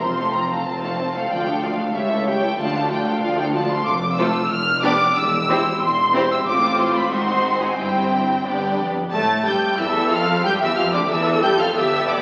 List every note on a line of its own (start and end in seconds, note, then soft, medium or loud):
0.01 0.59 F1 medium
0.01 0.59 F2 medium
0.01 0.18 C4 soft
0.01 0.18 F4 soft
0.01 0.17 C5 soft
0.01 0.34 C6 medium
0.17 0.36 A3 soft
0.17 0.35 C4 soft
0.17 0.34 A4 soft
0.17 0.34 F5 soft
0.34 0.51 C4 soft
0.34 0.51 F4 soft
0.34 0.50 C5 soft
0.34 0.58 A#5 medium
0.49 0.68 A3 soft
0.49 0.67 C4 soft
0.49 0.66 A4 soft
0.49 0.66 F5 soft
0.59 0.66 A#5 medium
0.65 1.23 F1 medium
0.65 1.24 F2 medium
0.65 0.82 C4 soft
0.65 0.82 F4 soft
0.65 0.81 C5 soft
0.65 1.15 A5 medium
0.82 1.00 A3 soft
0.82 1.00 C4 soft
0.82 0.99 A4 soft
0.82 0.99 F5 soft
0.98 1.15 C4 soft
0.98 1.16 F4 soft
0.98 1.15 C5 soft
1.14 1.32 A3 soft
1.14 1.32 C4 soft
1.14 1.31 A4 soft
1.14 1.31 F5 soft
1.14 1.31 F5 medium
1.30 1.87 D2 medium
1.30 1.47 F3 medium
1.30 1.46 F4 medium
1.30 1.47 F4 medium
1.30 1.46 D5 medium
1.30 1.63 G5 medium
1.47 1.63 A3 soft
1.47 1.63 D4 soft
1.47 1.63 A4 soft
1.47 1.63 F5 soft
1.63 1.80 F3 soft
1.63 1.79 F4 soft
1.63 1.79 F4 medium
1.63 1.79 D5 soft
1.63 1.95 F5 medium
1.79 1.95 A3 soft
1.79 1.95 D4 soft
1.79 1.95 A4 soft
1.79 1.95 F5 soft
1.94 2.50 C#2 medium
1.94 2.51 C#2 medium
1.94 2.10 G3 medium
1.94 2.10 G4 soft
1.94 2.09 C#5 soft
1.94 2.10 E5 soft
1.94 2.27 E5 medium
2.10 2.27 A3 soft
2.10 2.27 E4 soft
2.10 2.26 A4 medium
2.10 2.24 C#5 soft
2.25 2.43 G3 medium
2.25 2.43 G4 medium
2.25 2.40 C#5 soft
2.25 2.42 E5 medium
2.25 2.59 G5 medium
2.41 2.59 A3 medium
2.41 2.59 E4 soft
2.41 2.58 A4 soft
2.41 2.58 C#5 soft
2.57 3.14 D2 medium
2.57 3.15 D2 medium
2.57 2.74 F3 medium
2.57 2.73 F4 medium
2.57 2.74 F4 medium
2.57 2.73 D5 medium
2.57 2.91 A5 medium
2.74 2.91 A3 medium
2.74 2.91 D4 medium
2.74 2.90 A4 medium
2.74 2.90 F5 medium
2.90 3.07 F3 medium
2.90 3.06 F4 soft
2.90 3.07 F4 medium
2.90 3.06 D5 soft
2.90 3.22 G5 medium
3.06 3.23 A3 medium
3.06 3.23 D4 medium
3.06 3.23 A4 medium
3.06 3.23 F5 medium
3.22 3.79 D2 medium
3.22 3.38 F3 medium
3.22 3.38 F4 medium
3.22 3.38 D5 medium
3.22 3.38 F5 medium
3.38 3.55 A3 medium
3.38 3.55 D4 medium
3.38 3.55 A4 medium
3.38 3.54 F5 medium
3.38 3.45 G5 medium
3.54 3.71 F3 medium
3.54 3.71 F4 medium
3.54 3.71 D5 medium
3.54 3.70 A5 medium
3.71 3.87 A3 medium
3.71 3.87 D4 medium
3.71 3.87 A4 medium
3.71 3.87 F5 soft
3.71 3.88 C6 medium
3.86 4.40 F1 medium
3.86 4.40 F2 medium
3.86 4.19 D6 medium
4.18 4.34 A3 medium
4.18 4.34 F4 medium
4.18 4.34 A4 medium
4.18 4.34 C5 medium
4.18 4.51 E6 medium
4.50 5.05 F1 medium
4.50 5.06 F2 medium
4.50 4.83 F6 loud
4.84 4.99 B3 medium
4.84 4.99 D4 medium
4.84 4.99 G4 medium
4.84 4.99 D5 medium
4.84 5.17 D6 loud
5.16 5.71 E1 medium
5.16 5.70 E2 medium
5.16 5.82 E6 medium
5.49 5.65 C4 medium
5.49 5.65 E4 medium
5.49 5.65 G4 medium
5.49 5.65 C5 medium
5.82 6.36 E1 medium
5.82 6.36 E2 medium
5.82 6.30 C6 loud
6.14 6.29 C4 medium
6.14 6.30 E4 medium
6.14 6.30 G4 medium
6.14 6.30 C5 medium
6.32 6.38 E6 medium
6.46 7.08 A1 medium
6.46 7.08 A2 medium
6.46 7.09 C4 medium
6.46 7.09 F4 medium
6.46 7.09 C5 medium
6.46 6.79 D6 medium
6.81 6.97 C6 medium
6.98 7.13 B5 medium
7.11 7.77 G#1 medium
7.11 7.78 G#2 medium
7.11 7.78 C4 medium
7.11 7.79 D#4 medium
7.11 7.79 F#4 medium
7.11 7.76 C5 medium
7.11 7.62 C6 medium
7.63 7.79 G#5 medium
7.77 8.45 G1 medium
7.77 8.45 G2 medium
7.77 8.46 C4 medium
7.77 8.45 E4 medium
7.77 8.44 G4 medium
7.77 8.44 C5 medium
7.77 8.78 G5 medium
8.45 8.92 G1 medium
8.45 8.78 G2 medium
8.45 8.93 B3 medium
8.45 8.93 D4 medium
8.45 8.92 G4 medium
8.45 8.93 D5 medium
8.80 9.13 F2 medium
9.12 9.44 A2 medium
9.12 9.45 A3 loud
9.12 9.44 A5 medium
9.12 9.45 A6 medium
9.46 9.80 G2 medium
9.46 9.80 G3 medium
9.46 9.79 G5 medium
9.46 9.80 G6 medium
9.78 10.13 E2 medium
9.78 10.12 E3 medium
9.78 10.41 A4 medium
9.78 10.12 E5 medium
9.78 10.13 E6 medium
10.11 10.45 F2 medium
10.11 10.46 F3 medium
10.11 10.44 F5 medium
10.11 10.46 F6 loud
10.44 10.61 G2 medium
10.44 10.52 G3 medium
10.44 11.11 G4 medium
10.44 10.61 G5 medium
10.44 10.52 G6 medium
10.61 10.78 E2 medium
10.61 10.78 E3 medium
10.61 10.68 E5 medium
10.61 10.78 E6 loud
10.76 10.94 F2 medium
10.76 10.84 F3 medium
10.76 10.83 F5 medium
10.76 10.94 F6 medium
10.92 11.11 D2 medium
10.92 11.01 D3 medium
10.92 10.99 D5 medium
10.92 11.11 D6 medium
11.09 11.43 E2 medium
11.09 11.42 E3 medium
11.09 11.74 A4 medium
11.09 11.41 E5 medium
11.09 11.43 E6 medium
11.43 11.59 G2 medium
11.43 11.59 G3 loud
11.43 11.49 G5 medium
11.43 11.59 G6 loud
11.58 11.75 F2 medium
11.58 11.75 F3 medium
11.58 11.65 F5 medium
11.58 11.75 F6 medium
11.75 12.05 G1 medium
11.75 12.22 B3 medium
11.75 12.22 G4 medium
11.75 12.22 A4 medium
11.75 12.07 E5 medium
11.75 12.07 E6 medium
12.07 12.22 A1 medium
12.07 12.22 D5 medium
12.07 12.22 D6 medium